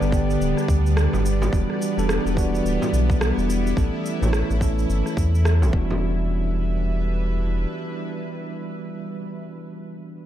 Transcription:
0.00 0.37 G1 medium
0.00 0.10 D3 medium
0.00 0.11 G3 medium
0.00 3.73 G3 medium
0.00 0.12 B3 medium
0.00 1.49 B3 medium
0.00 0.14 D4 medium
0.00 1.49 D4 medium
0.00 0.14 G4 medium
0.00 0.10 B4 medium
0.00 3.73 D5 medium
0.00 cabasa soft
0.10 1.49 D3 medium
0.10 1.49 G3 medium
0.10 1.50 B3 medium
0.10 1.50 D4 medium
0.10 1.51 G4 medium
0.10 kick loud
0.10 cabasa medium
0.30 cabasa soft
0.40 0.54 D1 loud
0.40 cabasa soft
0.57 cross-stick soft
0.57 cabasa soft
0.68 1.08 D2 medium
0.68 kick loud
0.68 cabasa medium
0.86 cabasa soft
0.97 cross-stick medium
0.97 cabasa soft
1.13 1.49 G1 medium
1.13 frame drum medium
1.13 cabasa soft
1.26 cabasa medium
1.42 frame drum loud
1.42 cabasa soft
1.52 1.66 E1 loud
1.52 1.93 E3 medium
1.52 1.93 G3 medium
1.52 3.75 B3 medium
1.52 1.93 B3 medium
1.52 1.94 D4 medium
1.52 5.69 E4 medium
1.52 1.94 F#4 medium
1.52 kick loud
1.52 cabasa soft
1.70 cross-stick soft
1.82 cabasa medium
1.97 2.19 E1 medium
1.97 2.34 E3 medium
1.97 2.34 G3 medium
1.97 2.34 B3 medium
1.97 2.34 D4 medium
1.97 2.35 A4 medium
1.97 cabasa soft
2.09 cross-stick medium
2.09 cabasa soft
2.25 2.61 E1 medium
2.25 cabasa soft
2.35 3.73 E3 medium
2.35 3.74 G3 medium
2.35 3.74 B3 medium
2.35 3.75 D4 medium
2.35 kick loud
2.35 cabasa medium
2.39 3.75 F#4 medium
2.55 cabasa soft
2.65 2.78 D1 medium
2.65 cabasa soft
2.82 frame drum medium
2.82 cabasa soft
2.93 3.32 B1 medium
2.93 cabasa medium
3.10 kick loud
3.10 cabasa soft
3.21 cross-stick medium
3.21 cabasa soft
3.37 3.73 E1 medium
3.37 cabasa soft
3.50 cabasa medium
3.67 cabasa soft
3.76 3.90 A1 medium
3.76 4.17 E3 medium
3.76 4.18 A3 medium
3.76 5.71 C#4 medium
3.76 4.18 C#4 medium
3.76 4.18 E4 medium
3.76 5.71 A4 medium
3.76 4.18 A4 medium
3.76 5.71 E5 medium
3.76 kick loud
3.76 cabasa soft
4.06 cabasa medium
4.21 4.43 A1 loud
4.21 4.58 E3 medium
4.21 4.58 A3 medium
4.21 4.58 C#4 medium
4.21 4.59 E4 medium
4.21 4.59 C#5 medium
4.21 frame drum medium
4.21 cabasa soft
4.33 cross-stick medium
4.33 cabasa soft
4.50 4.85 A1 medium
4.50 cabasa soft
4.59 5.69 E3 medium
4.59 5.73 A3 medium
4.59 5.73 C#4 medium
4.59 5.74 E4 medium
4.59 kick medium
4.59 cabasa medium
4.63 5.74 A4 medium
4.79 cabasa soft
4.89 5.03 G1 loud
4.89 cabasa soft
5.06 cross-stick soft
5.06 cabasa soft
5.17 5.63 E2 medium
5.17 kick loud
5.17 cabasa medium
5.35 cabasa soft
5.45 cross-stick medium
5.45 cabasa soft
5.62 5.71 A1 medium
5.62 frame drum medium
5.62 cabasa soft
5.70 7.65 E1 medium
5.70 9.12 E3 medium
5.70 9.13 G3 medium
5.70 9.02 G3 medium
5.70 9.15 B3 medium
5.70 9.02 D4 medium
5.70 9.02 E4 medium
5.70 9.02 B4 medium
5.70 9.02 E5 medium
5.70 kick loud
5.75 9.16 D4 medium
5.75 9.18 F#4 medium
5.91 frame drum medium

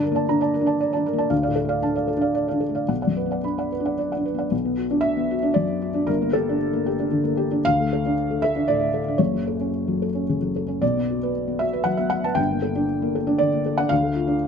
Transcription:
0.00 1.27 G2 medium
0.00 0.22 D3 medium
0.00 0.24 A#4 medium
0.00 0.15 D5 medium
0.00 0.16 A5 medium
0.12 0.39 A#3 medium
0.12 0.27 D5 medium
0.16 0.28 A5 medium
0.29 0.56 D4 medium
0.29 0.49 A#5 medium
0.41 0.53 D5 medium
0.41 0.53 A5 medium
0.54 0.74 A#4 medium
0.61 0.89 D4 medium
0.66 0.78 D5 medium
0.66 0.78 A5 medium
0.81 0.91 D5 medium
0.93 1.24 D4 medium
0.93 1.04 D5 medium
0.93 1.04 A5 medium
1.06 1.26 A#4 medium
1.13 1.31 A#3 medium
1.18 1.30 D5 medium
1.18 1.30 A5 medium
1.30 2.86 D2 medium
1.30 1.42 F5 medium
1.43 1.55 D5 medium
1.43 1.55 F5 medium
1.47 1.76 A2 medium
1.56 1.77 A4 medium
1.65 1.93 A3 medium
1.65 1.81 D5 medium
1.69 1.81 F5 medium
1.82 2.11 D4 medium
1.82 2.04 A5 medium
1.95 2.08 D5 medium
1.95 2.08 F5 medium
2.08 2.30 A4 medium
2.17 2.46 D4 medium
2.21 2.33 D5 medium
2.21 2.34 F5 medium
2.35 2.46 D5 medium
2.48 2.61 D5 soft
2.48 2.61 F5 soft
2.52 2.82 D4 medium
2.60 2.83 A4 soft
2.69 2.89 A3 soft
2.75 2.88 D5 soft
2.75 2.88 F5 soft
2.88 4.48 B1 medium
2.88 3.01 F#5 medium
3.02 3.15 D5 soft
3.02 3.15 F#5 soft
3.07 3.37 F#2 soft
3.17 3.39 B4 medium
3.26 3.55 B3 soft
3.31 3.43 D5 soft
3.31 3.44 F#5 medium
3.44 3.73 D4 soft
3.44 3.66 B5 soft
3.58 3.70 D5 soft
3.58 3.71 F#5 medium
3.72 3.94 B4 soft
3.80 4.09 D4 soft
3.85 3.97 D5 soft
3.85 3.98 F#5 soft
3.98 4.11 D5 medium
4.12 4.24 D5 soft
4.12 4.24 F#5 soft
4.17 4.45 D4 soft
4.25 4.47 B4 soft
4.34 4.52 B3 soft
4.34 4.51 D5 soft
4.39 4.51 F#5 soft
4.51 6.04 B1 medium
4.65 4.86 B3 medium
4.77 4.99 F#4 medium
4.91 5.33 D4 medium
5.01 5.55 E5 loud
5.17 5.38 B3 medium
5.31 5.52 F#4 medium
5.43 5.64 D4 medium
5.54 5.77 F#2 medium
5.54 6.07 D5 medium
5.68 5.89 B3 medium
5.82 6.03 F#4 medium
5.94 6.08 D4 medium
6.07 7.59 G1 medium
6.07 7.60 G2 medium
6.07 6.33 A#4 medium
6.22 6.42 A#3 medium
6.33 6.55 G4 medium
6.33 7.63 A4 loud
6.49 6.88 D4 medium
6.73 6.93 A#3 medium
6.86 7.06 G4 medium
7.00 7.19 D4 medium
7.11 7.32 D3 medium
7.24 7.45 A#3 medium
7.37 7.59 G4 medium
7.51 7.64 D4 medium
7.65 9.16 D2 medium
7.65 8.41 F5 loud
7.80 7.99 A3 medium
7.93 8.12 A4 medium
8.06 8.44 D4 medium
8.31 8.49 A3 medium
8.42 8.63 A4 medium
8.42 8.67 E5 loud
8.56 8.75 D4 medium
8.68 8.88 A2 medium
8.68 9.19 D5 medium
8.81 9.01 A3 medium
8.94 9.14 A4 medium
9.08 9.20 D4 soft
9.18 10.78 F#1 medium
9.18 10.78 F#2 medium
9.18 10.27 C#5 medium
9.34 9.55 F#3 soft
9.47 9.68 A4 medium
9.61 10.04 C#4 soft
9.88 10.09 F#3 medium
10.02 10.23 A4 soft
10.15 10.36 C#4 soft
10.29 10.50 C#3 medium
10.42 10.63 F#3 soft
10.56 10.77 A4 soft
10.68 10.82 C#4 soft
10.82 12.34 B1 medium
10.82 12.34 B2 medium
10.82 11.60 D5 medium
10.97 11.17 B3 soft
11.10 11.30 F#4 soft
11.23 11.64 B4 medium
11.47 11.68 B3 soft
11.59 11.81 F#4 medium
11.59 11.86 E5 medium
11.73 11.94 B4 medium
11.84 12.06 F#3 medium
11.84 11.98 F#5 loud
11.97 12.19 B3 soft
11.97 12.11 E5 medium
12.10 12.32 F#4 soft
12.10 12.24 F#5 medium
12.24 12.38 B4 medium
12.24 12.37 A5 medium
12.35 13.85 G1 medium
12.35 13.86 G2 medium
12.35 13.38 G5 loud
12.51 12.71 A#3 soft
12.62 12.83 A4 medium
12.75 13.17 D4 medium
13.02 13.22 A#3 medium
13.15 13.35 A4 medium
13.27 13.47 D4 medium
13.38 13.60 D3 medium
13.38 13.77 D5 loud
13.53 13.73 A#3 soft
13.66 13.86 A4 medium
13.78 13.91 D4 medium
13.78 13.90 F#5 loud
13.89 14.47 D2 medium
13.89 14.47 F5 loud
14.03 14.23 A3 medium
14.15 14.36 F4 medium
14.27 14.47 D4 medium

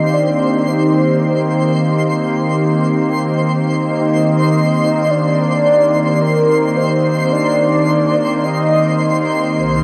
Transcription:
0.00 9.84 D#3 medium
0.00 9.84 A#3 medium
0.00 9.84 C4 medium
0.00 9.57 D#4 medium
0.00 9.57 G4 medium
0.00 9.58 C5 medium
0.00 0.15 D#5 loud
0.00 9.58 C6 medium
0.13 0.70 D5 medium
0.68 2.35 C5 medium
4.01 5.12 D#5 loud
5.11 6.23 D5 loud
6.22 6.78 A#4 loud
6.77 7.34 C5 loud
7.33 8.47 D5 loud
8.45 9.29 D#5 medium
9.55 9.84 C2 medium
9.55 9.84 C5 medium
9.55 9.84 C6 medium
9.77 9.84 F3 medium

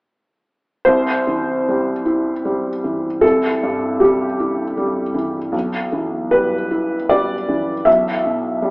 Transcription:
0.85 3.18 C2 soft
0.85 3.21 C5 medium
1.27 1.91 E3 soft
1.69 2.31 G3 soft
2.06 2.68 E4 soft
2.45 3.07 G3 soft
2.84 3.46 E3 soft
3.21 5.49 C2 soft
3.21 4.00 A4 medium
3.63 4.24 G2 soft
4.00 4.62 G3 soft
4.00 5.15 G4 soft
4.40 5.00 E4 soft
4.77 5.38 G3 soft
5.14 5.53 E3 soft
5.52 7.82 B1 soft
5.92 6.55 E3 soft
6.31 6.94 G3 soft
6.31 7.09 B4 medium
6.71 7.33 E4 soft
7.09 7.72 G3 soft
7.09 7.87 D5 medium
7.49 8.10 E3 soft
7.85 8.70 B1 soft
7.85 8.70 E5 medium
8.25 8.70 B2 soft
8.62 8.70 G3 soft

